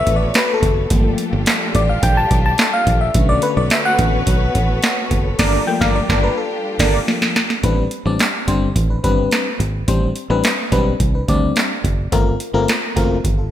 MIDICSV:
0, 0, Header, 1, 6, 480
1, 0, Start_track
1, 0, Tempo, 560748
1, 776, Time_signature, 4, 2, 24, 8
1, 11565, End_track
2, 0, Start_track
2, 0, Title_t, "Analog polysynth"
2, 0, Program_c, 0, 90
2, 4616, Note_on_c, 0, 62, 108
2, 4616, Note_on_c, 0, 70, 106
2, 4616, Note_on_c, 0, 74, 109
2, 4779, Note_off_c, 0, 62, 0
2, 4779, Note_off_c, 0, 70, 0
2, 4779, Note_off_c, 0, 74, 0
2, 4972, Note_on_c, 0, 70, 117
2, 4973, Note_on_c, 0, 62, 105
2, 4973, Note_on_c, 0, 74, 120
2, 5137, Note_off_c, 0, 62, 0
2, 5137, Note_off_c, 0, 70, 0
2, 5138, Note_off_c, 0, 74, 0
2, 5213, Note_on_c, 0, 70, 99
2, 5213, Note_on_c, 0, 74, 100
2, 5214, Note_on_c, 0, 62, 120
2, 5377, Note_off_c, 0, 70, 0
2, 5377, Note_off_c, 0, 74, 0
2, 5378, Note_off_c, 0, 62, 0
2, 5815, Note_on_c, 0, 74, 105
2, 5816, Note_on_c, 0, 62, 102
2, 5817, Note_on_c, 0, 70, 95
2, 5978, Note_off_c, 0, 74, 0
2, 5979, Note_off_c, 0, 62, 0
2, 5980, Note_off_c, 0, 70, 0
2, 11565, End_track
3, 0, Start_track
3, 0, Title_t, "String section"
3, 0, Program_c, 1, 48
3, 0, Note_on_c, 1, 59, 67
3, 0, Note_on_c, 1, 66, 68
3, 0, Note_on_c, 1, 69, 67
3, 0, Note_on_c, 1, 71, 81
3, 0, Note_on_c, 1, 73, 67
3, 758, Note_off_c, 1, 71, 0
3, 758, Note_off_c, 1, 73, 0
3, 759, Note_off_c, 1, 59, 0
3, 759, Note_off_c, 1, 66, 0
3, 774, Note_on_c, 1, 55, 73
3, 774, Note_on_c, 1, 65, 74
3, 775, Note_on_c, 1, 62, 63
3, 775, Note_on_c, 1, 67, 78
3, 2663, Note_off_c, 1, 69, 0
3, 2676, Note_off_c, 1, 55, 0
3, 2676, Note_off_c, 1, 62, 0
3, 2676, Note_off_c, 1, 65, 0
3, 2676, Note_off_c, 1, 67, 0
3, 2692, Note_on_c, 1, 59, 78
3, 2694, Note_on_c, 1, 69, 66
3, 2694, Note_on_c, 1, 71, 90
3, 2695, Note_on_c, 1, 73, 68
3, 2697, Note_on_c, 1, 66, 71
3, 4595, Note_off_c, 1, 59, 0
3, 4596, Note_off_c, 1, 71, 0
3, 4596, Note_off_c, 1, 73, 0
3, 4597, Note_off_c, 1, 66, 0
3, 4613, Note_on_c, 1, 62, 67
3, 4614, Note_on_c, 1, 55, 77
3, 4616, Note_on_c, 1, 65, 72
3, 4616, Note_on_c, 1, 67, 83
3, 6501, Note_off_c, 1, 69, 0
3, 6515, Note_off_c, 1, 62, 0
3, 6516, Note_off_c, 1, 55, 0
3, 6517, Note_off_c, 1, 65, 0
3, 6517, Note_off_c, 1, 67, 0
3, 11565, End_track
4, 0, Start_track
4, 0, Title_t, "FM electric piano"
4, 0, Program_c, 2, 5
4, 0, Note_on_c, 2, 76, 98
4, 139, Note_on_c, 2, 74, 81
4, 141, Note_off_c, 2, 76, 0
4, 286, Note_off_c, 2, 74, 0
4, 301, Note_on_c, 2, 71, 91
4, 460, Note_on_c, 2, 69, 77
4, 463, Note_off_c, 2, 71, 0
4, 775, Note_on_c, 2, 53, 53
4, 779, Note_on_c, 2, 57, 51
4, 784, Note_on_c, 2, 58, 61
4, 1144, Note_off_c, 2, 69, 0
4, 1461, Note_off_c, 2, 53, 0
4, 1463, Note_off_c, 2, 57, 0
4, 1466, Note_off_c, 2, 58, 0
4, 1502, Note_on_c, 2, 74, 86
4, 1621, Note_on_c, 2, 77, 83
4, 1623, Note_off_c, 2, 74, 0
4, 1740, Note_on_c, 2, 79, 105
4, 1742, Note_off_c, 2, 77, 0
4, 1850, Note_off_c, 2, 79, 0
4, 1859, Note_on_c, 2, 81, 101
4, 2081, Note_off_c, 2, 81, 0
4, 2103, Note_on_c, 2, 81, 110
4, 2341, Note_on_c, 2, 77, 98
4, 2347, Note_off_c, 2, 81, 0
4, 2562, Note_off_c, 2, 77, 0
4, 2576, Note_on_c, 2, 76, 79
4, 2690, Note_on_c, 2, 50, 61
4, 2693, Note_on_c, 2, 57, 55
4, 2699, Note_on_c, 2, 61, 63
4, 2816, Note_on_c, 2, 74, 99
4, 2823, Note_off_c, 2, 76, 0
4, 2927, Note_off_c, 2, 74, 0
4, 2934, Note_on_c, 2, 71, 91
4, 2988, Note_off_c, 2, 71, 0
4, 3056, Note_on_c, 2, 74, 93
4, 3176, Note_on_c, 2, 76, 94
4, 3180, Note_off_c, 2, 74, 0
4, 3230, Note_off_c, 2, 76, 0
4, 3298, Note_on_c, 2, 78, 103
4, 3379, Note_off_c, 2, 50, 0
4, 3380, Note_off_c, 2, 57, 0
4, 3383, Note_off_c, 2, 61, 0
4, 3410, Note_on_c, 2, 50, 51
4, 3414, Note_on_c, 2, 57, 41
4, 3417, Note_on_c, 2, 61, 60
4, 3629, Note_off_c, 2, 50, 0
4, 3631, Note_off_c, 2, 57, 0
4, 3633, Note_off_c, 2, 61, 0
4, 4463, Note_off_c, 2, 78, 0
4, 4614, Note_on_c, 2, 74, 96
4, 4838, Note_off_c, 2, 74, 0
4, 4850, Note_on_c, 2, 53, 61
4, 4854, Note_on_c, 2, 57, 53
4, 4856, Note_on_c, 2, 79, 92
4, 4861, Note_on_c, 2, 58, 68
4, 4972, Note_on_c, 2, 77, 97
4, 4980, Note_off_c, 2, 79, 0
4, 5027, Note_off_c, 2, 77, 0
4, 5096, Note_on_c, 2, 74, 95
4, 5172, Note_off_c, 2, 53, 0
4, 5174, Note_off_c, 2, 57, 0
4, 5178, Note_off_c, 2, 58, 0
4, 5336, Note_on_c, 2, 71, 74
4, 5343, Note_off_c, 2, 74, 0
4, 5456, Note_on_c, 2, 69, 76
4, 5459, Note_off_c, 2, 71, 0
4, 5902, Note_off_c, 2, 69, 0
4, 6056, Note_on_c, 2, 53, 54
4, 6057, Note_on_c, 2, 57, 48
4, 6062, Note_on_c, 2, 58, 59
4, 6272, Note_off_c, 2, 53, 0
4, 6273, Note_off_c, 2, 57, 0
4, 6275, Note_off_c, 2, 58, 0
4, 6533, Note_on_c, 2, 55, 80
4, 6537, Note_on_c, 2, 60, 72
4, 6539, Note_on_c, 2, 62, 74
4, 6541, Note_on_c, 2, 71, 91
4, 6716, Note_off_c, 2, 55, 0
4, 6718, Note_off_c, 2, 60, 0
4, 6719, Note_off_c, 2, 62, 0
4, 6720, Note_off_c, 2, 71, 0
4, 6896, Note_on_c, 2, 55, 80
4, 6898, Note_on_c, 2, 60, 69
4, 6901, Note_on_c, 2, 62, 83
4, 6904, Note_on_c, 2, 74, 88
4, 7077, Note_off_c, 2, 55, 0
4, 7078, Note_off_c, 2, 60, 0
4, 7080, Note_off_c, 2, 62, 0
4, 7081, Note_off_c, 2, 74, 0
4, 7254, Note_on_c, 2, 55, 81
4, 7258, Note_on_c, 2, 60, 79
4, 7259, Note_on_c, 2, 62, 76
4, 7260, Note_on_c, 2, 72, 84
4, 7436, Note_off_c, 2, 55, 0
4, 7438, Note_off_c, 2, 60, 0
4, 7439, Note_off_c, 2, 62, 0
4, 7439, Note_off_c, 2, 72, 0
4, 7612, Note_on_c, 2, 62, 75
4, 7620, Note_on_c, 2, 71, 95
4, 7674, Note_off_c, 2, 62, 0
4, 7679, Note_off_c, 2, 71, 0
4, 7735, Note_on_c, 2, 55, 76
4, 7736, Note_on_c, 2, 60, 76
4, 7737, Note_on_c, 2, 62, 74
4, 7739, Note_on_c, 2, 71, 93
4, 8098, Note_off_c, 2, 55, 0
4, 8099, Note_off_c, 2, 60, 0
4, 8099, Note_off_c, 2, 62, 0
4, 8100, Note_off_c, 2, 71, 0
4, 8455, Note_on_c, 2, 55, 87
4, 8457, Note_on_c, 2, 60, 76
4, 8460, Note_on_c, 2, 62, 72
4, 8461, Note_on_c, 2, 72, 87
4, 8637, Note_off_c, 2, 55, 0
4, 8638, Note_off_c, 2, 60, 0
4, 8639, Note_off_c, 2, 62, 0
4, 8640, Note_off_c, 2, 72, 0
4, 8814, Note_on_c, 2, 55, 90
4, 8818, Note_on_c, 2, 60, 75
4, 8818, Note_on_c, 2, 62, 72
4, 8820, Note_on_c, 2, 71, 90
4, 8996, Note_off_c, 2, 55, 0
4, 8998, Note_off_c, 2, 60, 0
4, 8998, Note_off_c, 2, 62, 0
4, 8999, Note_off_c, 2, 71, 0
4, 9174, Note_on_c, 2, 55, 86
4, 9176, Note_on_c, 2, 60, 82
4, 9179, Note_on_c, 2, 62, 73
4, 9182, Note_on_c, 2, 71, 86
4, 9356, Note_off_c, 2, 55, 0
4, 9357, Note_off_c, 2, 60, 0
4, 9359, Note_off_c, 2, 62, 0
4, 9360, Note_off_c, 2, 71, 0
4, 9536, Note_on_c, 2, 62, 75
4, 9544, Note_on_c, 2, 71, 93
4, 9597, Note_off_c, 2, 62, 0
4, 9600, Note_off_c, 2, 71, 0
4, 9658, Note_on_c, 2, 55, 78
4, 9660, Note_on_c, 2, 60, 81
4, 9662, Note_on_c, 2, 62, 75
4, 9666, Note_on_c, 2, 74, 94
4, 10020, Note_off_c, 2, 55, 0
4, 10020, Note_off_c, 2, 60, 0
4, 10022, Note_off_c, 2, 62, 0
4, 10023, Note_off_c, 2, 74, 0
4, 10375, Note_on_c, 2, 57, 86
4, 10375, Note_on_c, 2, 60, 74
4, 10379, Note_on_c, 2, 65, 74
4, 10381, Note_on_c, 2, 70, 100
4, 10557, Note_off_c, 2, 57, 0
4, 10557, Note_off_c, 2, 60, 0
4, 10559, Note_off_c, 2, 65, 0
4, 10560, Note_off_c, 2, 70, 0
4, 10730, Note_on_c, 2, 57, 83
4, 10734, Note_on_c, 2, 60, 84
4, 10735, Note_on_c, 2, 65, 74
4, 10738, Note_on_c, 2, 70, 95
4, 10914, Note_off_c, 2, 57, 0
4, 10916, Note_off_c, 2, 60, 0
4, 10917, Note_off_c, 2, 65, 0
4, 10918, Note_off_c, 2, 70, 0
4, 11090, Note_on_c, 2, 57, 79
4, 11093, Note_on_c, 2, 60, 74
4, 11095, Note_on_c, 2, 65, 82
4, 11096, Note_on_c, 2, 70, 89
4, 11274, Note_off_c, 2, 57, 0
4, 11276, Note_off_c, 2, 60, 0
4, 11277, Note_off_c, 2, 65, 0
4, 11277, Note_off_c, 2, 70, 0
4, 11450, Note_on_c, 2, 65, 78
4, 11457, Note_on_c, 2, 69, 84
4, 11513, Note_off_c, 2, 65, 0
4, 11517, Note_off_c, 2, 69, 0
4, 11565, End_track
5, 0, Start_track
5, 0, Title_t, "Fingered electric bass"
5, 0, Program_c, 3, 33
5, 57, Note_on_c, 3, 33, 94
5, 251, Note_off_c, 3, 33, 0
5, 534, Note_on_c, 3, 30, 88
5, 729, Note_off_c, 3, 30, 0
5, 775, Note_on_c, 3, 31, 103
5, 970, Note_off_c, 3, 31, 0
5, 1136, Note_on_c, 3, 31, 97
5, 1233, Note_off_c, 3, 31, 0
5, 1495, Note_on_c, 3, 33, 88
5, 1690, Note_off_c, 3, 33, 0
5, 1735, Note_on_c, 3, 34, 109
5, 1930, Note_off_c, 3, 34, 0
5, 1975, Note_on_c, 3, 35, 103
5, 2170, Note_off_c, 3, 35, 0
5, 2453, Note_on_c, 3, 34, 101
5, 2649, Note_off_c, 3, 34, 0
5, 2694, Note_on_c, 3, 35, 100
5, 2890, Note_off_c, 3, 35, 0
5, 3054, Note_on_c, 3, 35, 94
5, 3152, Note_off_c, 3, 35, 0
5, 3413, Note_on_c, 3, 33, 103
5, 3609, Note_off_c, 3, 33, 0
5, 3654, Note_on_c, 3, 35, 95
5, 3850, Note_off_c, 3, 35, 0
5, 3895, Note_on_c, 3, 33, 96
5, 4090, Note_off_c, 3, 33, 0
5, 4372, Note_on_c, 3, 30, 89
5, 4569, Note_off_c, 3, 30, 0
5, 4613, Note_on_c, 3, 31, 113
5, 4777, Note_off_c, 3, 31, 0
5, 4973, Note_on_c, 3, 31, 104
5, 5138, Note_off_c, 3, 31, 0
5, 5214, Note_on_c, 3, 31, 100
5, 5378, Note_off_c, 3, 31, 0
5, 5815, Note_on_c, 3, 31, 113
5, 5978, Note_off_c, 3, 31, 0
5, 6535, Note_on_c, 3, 33, 103
5, 6730, Note_off_c, 3, 33, 0
5, 6895, Note_on_c, 3, 33, 96
5, 6993, Note_off_c, 3, 33, 0
5, 7256, Note_on_c, 3, 31, 88
5, 7450, Note_off_c, 3, 31, 0
5, 7495, Note_on_c, 3, 33, 96
5, 7690, Note_off_c, 3, 33, 0
5, 7737, Note_on_c, 3, 31, 78
5, 7932, Note_off_c, 3, 31, 0
5, 8215, Note_on_c, 3, 32, 84
5, 8410, Note_off_c, 3, 32, 0
5, 8456, Note_on_c, 3, 33, 101
5, 8651, Note_off_c, 3, 33, 0
5, 8816, Note_on_c, 3, 33, 100
5, 8914, Note_off_c, 3, 33, 0
5, 9176, Note_on_c, 3, 35, 102
5, 9371, Note_off_c, 3, 35, 0
5, 9415, Note_on_c, 3, 36, 95
5, 9610, Note_off_c, 3, 36, 0
5, 9658, Note_on_c, 3, 38, 88
5, 9852, Note_off_c, 3, 38, 0
5, 10136, Note_on_c, 3, 30, 90
5, 10330, Note_off_c, 3, 30, 0
5, 10378, Note_on_c, 3, 31, 107
5, 10572, Note_off_c, 3, 31, 0
5, 10733, Note_on_c, 3, 31, 87
5, 10831, Note_off_c, 3, 31, 0
5, 11098, Note_on_c, 3, 30, 99
5, 11292, Note_off_c, 3, 30, 0
5, 11337, Note_on_c, 3, 31, 90
5, 11531, Note_off_c, 3, 31, 0
5, 11565, End_track
6, 0, Start_track
6, 0, Title_t, "Drums"
6, 57, Note_on_c, 9, 36, 99
6, 57, Note_on_c, 9, 42, 78
6, 142, Note_off_c, 9, 36, 0
6, 143, Note_off_c, 9, 42, 0
6, 292, Note_on_c, 9, 42, 75
6, 301, Note_on_c, 9, 38, 105
6, 310, Note_on_c, 9, 39, 92
6, 378, Note_off_c, 9, 42, 0
6, 387, Note_off_c, 9, 38, 0
6, 396, Note_off_c, 9, 39, 0
6, 535, Note_on_c, 9, 36, 90
6, 537, Note_on_c, 9, 42, 74
6, 620, Note_off_c, 9, 36, 0
6, 623, Note_off_c, 9, 42, 0
6, 773, Note_on_c, 9, 42, 111
6, 775, Note_on_c, 9, 36, 127
6, 859, Note_off_c, 9, 42, 0
6, 861, Note_off_c, 9, 36, 0
6, 1010, Note_on_c, 9, 42, 75
6, 1096, Note_off_c, 9, 42, 0
6, 1251, Note_on_c, 9, 42, 101
6, 1261, Note_on_c, 9, 38, 113
6, 1270, Note_on_c, 9, 39, 99
6, 1337, Note_off_c, 9, 42, 0
6, 1346, Note_off_c, 9, 38, 0
6, 1355, Note_off_c, 9, 39, 0
6, 1495, Note_on_c, 9, 36, 99
6, 1495, Note_on_c, 9, 42, 87
6, 1581, Note_off_c, 9, 36, 0
6, 1581, Note_off_c, 9, 42, 0
6, 1735, Note_on_c, 9, 36, 113
6, 1736, Note_on_c, 9, 42, 113
6, 1821, Note_off_c, 9, 36, 0
6, 1821, Note_off_c, 9, 42, 0
6, 1975, Note_on_c, 9, 42, 77
6, 1976, Note_on_c, 9, 36, 108
6, 2061, Note_off_c, 9, 42, 0
6, 2062, Note_off_c, 9, 36, 0
6, 2208, Note_on_c, 9, 42, 67
6, 2217, Note_on_c, 9, 38, 117
6, 2226, Note_on_c, 9, 39, 86
6, 2294, Note_off_c, 9, 42, 0
6, 2303, Note_off_c, 9, 38, 0
6, 2312, Note_off_c, 9, 39, 0
6, 2453, Note_on_c, 9, 36, 90
6, 2455, Note_on_c, 9, 42, 70
6, 2539, Note_off_c, 9, 36, 0
6, 2541, Note_off_c, 9, 42, 0
6, 2692, Note_on_c, 9, 42, 111
6, 2694, Note_on_c, 9, 36, 119
6, 2777, Note_off_c, 9, 42, 0
6, 2780, Note_off_c, 9, 36, 0
6, 2927, Note_on_c, 9, 42, 81
6, 3013, Note_off_c, 9, 42, 0
6, 3169, Note_on_c, 9, 42, 88
6, 3178, Note_on_c, 9, 38, 123
6, 3187, Note_on_c, 9, 39, 105
6, 3255, Note_off_c, 9, 42, 0
6, 3264, Note_off_c, 9, 38, 0
6, 3273, Note_off_c, 9, 39, 0
6, 3413, Note_on_c, 9, 42, 90
6, 3414, Note_on_c, 9, 36, 98
6, 3498, Note_off_c, 9, 42, 0
6, 3499, Note_off_c, 9, 36, 0
6, 3653, Note_on_c, 9, 36, 122
6, 3653, Note_on_c, 9, 42, 109
6, 3739, Note_off_c, 9, 36, 0
6, 3739, Note_off_c, 9, 42, 0
6, 3895, Note_on_c, 9, 36, 96
6, 3895, Note_on_c, 9, 42, 75
6, 3980, Note_off_c, 9, 42, 0
6, 3981, Note_off_c, 9, 36, 0
6, 4130, Note_on_c, 9, 42, 80
6, 4139, Note_on_c, 9, 38, 118
6, 4148, Note_on_c, 9, 39, 83
6, 4216, Note_off_c, 9, 42, 0
6, 4225, Note_off_c, 9, 38, 0
6, 4234, Note_off_c, 9, 39, 0
6, 4372, Note_on_c, 9, 36, 87
6, 4374, Note_on_c, 9, 42, 70
6, 4458, Note_off_c, 9, 36, 0
6, 4459, Note_off_c, 9, 42, 0
6, 4611, Note_on_c, 9, 49, 90
6, 4614, Note_on_c, 9, 36, 113
6, 4617, Note_on_c, 9, 38, 119
6, 4697, Note_off_c, 9, 49, 0
6, 4699, Note_off_c, 9, 36, 0
6, 4703, Note_off_c, 9, 38, 0
6, 4974, Note_on_c, 9, 36, 108
6, 4978, Note_on_c, 9, 38, 106
6, 5059, Note_off_c, 9, 36, 0
6, 5063, Note_off_c, 9, 38, 0
6, 5215, Note_on_c, 9, 36, 112
6, 5220, Note_on_c, 9, 38, 110
6, 5300, Note_off_c, 9, 36, 0
6, 5305, Note_off_c, 9, 38, 0
6, 5815, Note_on_c, 9, 36, 108
6, 5815, Note_on_c, 9, 49, 80
6, 5821, Note_on_c, 9, 38, 112
6, 5900, Note_off_c, 9, 36, 0
6, 5900, Note_off_c, 9, 49, 0
6, 5906, Note_off_c, 9, 38, 0
6, 6062, Note_on_c, 9, 38, 85
6, 6148, Note_off_c, 9, 38, 0
6, 6180, Note_on_c, 9, 38, 84
6, 6266, Note_off_c, 9, 38, 0
6, 6301, Note_on_c, 9, 38, 105
6, 6387, Note_off_c, 9, 38, 0
6, 6421, Note_on_c, 9, 38, 82
6, 6506, Note_off_c, 9, 38, 0
6, 6535, Note_on_c, 9, 36, 117
6, 6536, Note_on_c, 9, 42, 96
6, 6621, Note_off_c, 9, 36, 0
6, 6621, Note_off_c, 9, 42, 0
6, 6772, Note_on_c, 9, 42, 72
6, 6857, Note_off_c, 9, 42, 0
6, 7014, Note_on_c, 9, 42, 80
6, 7023, Note_on_c, 9, 38, 105
6, 7032, Note_on_c, 9, 39, 85
6, 7100, Note_off_c, 9, 42, 0
6, 7109, Note_off_c, 9, 38, 0
6, 7118, Note_off_c, 9, 39, 0
6, 7256, Note_on_c, 9, 36, 78
6, 7257, Note_on_c, 9, 42, 85
6, 7342, Note_off_c, 9, 36, 0
6, 7343, Note_off_c, 9, 42, 0
6, 7496, Note_on_c, 9, 36, 111
6, 7497, Note_on_c, 9, 42, 96
6, 7582, Note_off_c, 9, 36, 0
6, 7583, Note_off_c, 9, 42, 0
6, 7737, Note_on_c, 9, 36, 89
6, 7738, Note_on_c, 9, 42, 69
6, 7823, Note_off_c, 9, 36, 0
6, 7824, Note_off_c, 9, 42, 0
6, 7973, Note_on_c, 9, 42, 64
6, 7982, Note_on_c, 9, 38, 103
6, 7991, Note_on_c, 9, 39, 73
6, 8059, Note_off_c, 9, 42, 0
6, 8067, Note_off_c, 9, 38, 0
6, 8076, Note_off_c, 9, 39, 0
6, 8215, Note_on_c, 9, 36, 78
6, 8219, Note_on_c, 9, 42, 63
6, 8301, Note_off_c, 9, 36, 0
6, 8305, Note_off_c, 9, 42, 0
6, 8456, Note_on_c, 9, 42, 95
6, 8457, Note_on_c, 9, 36, 110
6, 8542, Note_off_c, 9, 36, 0
6, 8542, Note_off_c, 9, 42, 0
6, 8693, Note_on_c, 9, 42, 69
6, 8779, Note_off_c, 9, 42, 0
6, 8933, Note_on_c, 9, 42, 83
6, 8943, Note_on_c, 9, 38, 108
6, 8952, Note_on_c, 9, 39, 97
6, 9019, Note_off_c, 9, 42, 0
6, 9028, Note_off_c, 9, 38, 0
6, 9037, Note_off_c, 9, 39, 0
6, 9177, Note_on_c, 9, 36, 86
6, 9177, Note_on_c, 9, 42, 76
6, 9262, Note_off_c, 9, 36, 0
6, 9263, Note_off_c, 9, 42, 0
6, 9416, Note_on_c, 9, 36, 110
6, 9416, Note_on_c, 9, 42, 96
6, 9501, Note_off_c, 9, 36, 0
6, 9502, Note_off_c, 9, 42, 0
6, 9658, Note_on_c, 9, 36, 93
6, 9660, Note_on_c, 9, 42, 68
6, 9744, Note_off_c, 9, 36, 0
6, 9745, Note_off_c, 9, 42, 0
6, 9893, Note_on_c, 9, 42, 62
6, 9902, Note_on_c, 9, 38, 96
6, 9911, Note_on_c, 9, 39, 80
6, 9979, Note_off_c, 9, 42, 0
6, 9988, Note_off_c, 9, 38, 0
6, 9997, Note_off_c, 9, 39, 0
6, 10136, Note_on_c, 9, 36, 83
6, 10141, Note_on_c, 9, 42, 69
6, 10222, Note_off_c, 9, 36, 0
6, 10226, Note_off_c, 9, 42, 0
6, 10377, Note_on_c, 9, 36, 110
6, 10377, Note_on_c, 9, 42, 91
6, 10463, Note_off_c, 9, 36, 0
6, 10463, Note_off_c, 9, 42, 0
6, 10615, Note_on_c, 9, 42, 74
6, 10701, Note_off_c, 9, 42, 0
6, 10857, Note_on_c, 9, 42, 87
6, 10866, Note_on_c, 9, 38, 113
6, 10875, Note_on_c, 9, 39, 90
6, 10943, Note_off_c, 9, 42, 0
6, 10952, Note_off_c, 9, 38, 0
6, 10961, Note_off_c, 9, 39, 0
6, 11097, Note_on_c, 9, 36, 88
6, 11100, Note_on_c, 9, 42, 83
6, 11183, Note_off_c, 9, 36, 0
6, 11185, Note_off_c, 9, 42, 0
6, 11337, Note_on_c, 9, 36, 107
6, 11339, Note_on_c, 9, 42, 97
6, 11422, Note_off_c, 9, 36, 0
6, 11425, Note_off_c, 9, 42, 0
6, 11565, End_track
0, 0, End_of_file